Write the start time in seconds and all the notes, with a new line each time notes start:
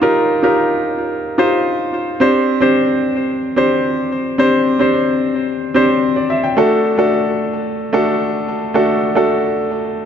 Already playing: D#4 F4 G4 A#4 C5
0.02 D#4 F4 G4 A#4
0.43 D#4 F4 G4 A#4
1.38 D#4 F4 G4 C5
2.20 C4 D4 G4 C5
2.61 C4 D4 G4 C5
3.56 C4 D4 G4 C5
4.38 C4 D4 G4 C5
4.79 C4 D4 G4 C5
5.74 C4 D4 G4 C5
6.16 D5
6.30 E5
6.44 G5
6.57 A3 D4 F#4 A4
6.98 A3 D4 F#4 A4
7.93 A3 D4 F#4 A4
8.74 A3 D4 F#4 A4
9.15 A3 D4 F#4 A4